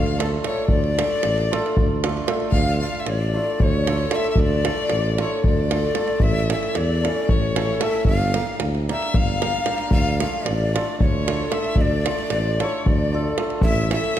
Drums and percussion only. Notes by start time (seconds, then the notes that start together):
0.06 davul high
0.20 davul high
0.44 davul high
0.68 davul low
0.84 davul high
0.99 davul high
1.23 davul high
1.38 davul high
1.53 davul high
1.66 davul high
1.77 davul low
2.04 davul high
2.17 davul high
2.28 davul high
2.40 davul high
2.52 davul low
2.95 davul high
3.06 davul high
3.60 davul low
3.87 davul high
4.11 davul high
4.24 davul high
4.36 davul low
4.65 davul high
4.78 davul high
4.90 davul high
5.18 davul high
5.44 davul low
5.71 davul high
5.95 davul high
6.08 davul high
6.20 davul low
6.50 davul high
6.63 davul high
6.75 davul high
7.05 davul high
7.29 davul low
7.56 davul high
7.81 davul high
7.93 davul high
8.05 davul low
8.34 davul high
8.47 davul high
8.60 davul high
8.75 davul high
8.89 davul high
9.02 davul high
9.14 davul low
9.28 davul high
9.42 davul high
9.66 davul high
9.78 davul high
9.91 davul low
10.20 davul high
10.33 davul high
10.46 davul high
10.76 davul high
11.00 davul low
11.28 davul high
11.52 davul high
11.64 davul high
11.76 davul low
12.06 davul high
12.19 davul high
12.30 davul high
12.60 davul high
12.86 davul low
13.38 davul high
13.50 davul high
13.62 davul low
13.91 davul high
14.04 davul high